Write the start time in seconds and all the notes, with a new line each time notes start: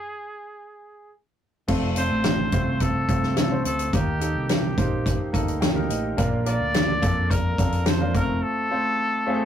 Already playing: G#4
1.68 F1 A3 C4 F4 A4, kick, crash
1.96 A3 C4 F4 A4 C5, closed hi-hat
2.11 A1
2.24 snare, closed hi-hat
2.52 C2 A3 C4 F4 C5, kick, closed hi-hat
2.80 A4, kick, closed hi-hat
3.08 C2 A3 C4 F4 A4, kick, closed hi-hat
3.23 snare
3.37 A4, snare, closed hi-hat
3.51 A3 C4 F4 C5
3.65 D2 A4, closed hi-hat
3.79 closed hi-hat
3.92 D#2 D#3 A#3 D#4 G4 A#4, kick, closed hi-hat
4.20 A#3 D#4 G4 A4, closed hi-hat
4.35 C2
4.49 G4, snare, closed hi-hat
4.77 A#1 A#3 D#4 G4 C5, kick, closed hi-hat
5.06 kick, closed hi-hat
5.33 D2 A#3 D#4 G4 A4 A#5, kick, closed hi-hat
5.48 closed hi-hat
5.61 G5, snare, closed hi-hat
5.75 A#3 D#4 G4 A#4
5.89 A1 D#5, closed hi-hat
6.17 A#1 A#2 A#3 D4 F4 A#4, kick, closed hi-hat
6.46 A#3 D4 F4 A#4 D5, closed hi-hat
6.60 D2
6.74 snare, closed hi-hat
7.02 F2 A#3 D4 F4 A4, kick, closed hi-hat
7.31 A#4, kick, closed hi-hat
7.58 F2 A#3 D4 F4 A4, kick, closed hi-hat
7.72 closed hi-hat
7.86 C5, snare, closed hi-hat
8.00 A#3 D4 F4 A#4
8.14 F1 A3 C4 F4 A4 A#4, kick, closed hi-hat
8.42 A4
8.71 A3 C4 F4 C5
9.26 A3 C4 F4 G#4
9.34 A4